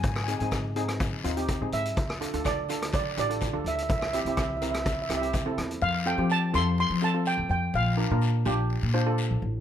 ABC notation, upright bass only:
X:1
M:4/4
L:1/16
Q:1/4=125
K:F
V:1 name="Upright bass" clef=bass
_A,,3 A,,6- A,, _E,,3 A,, A,,2 | D,,3 D,,6- D,, A,,,3 D,, D,,2 | C,,3 C,,6- C,, C,,2 D,,2 E,,2 | F,,3 F,3 F,,3 F,4 F,, F,,2 |
B,,,3 B,,3 B,,,3 B,,4 B,,, A,,,2 |]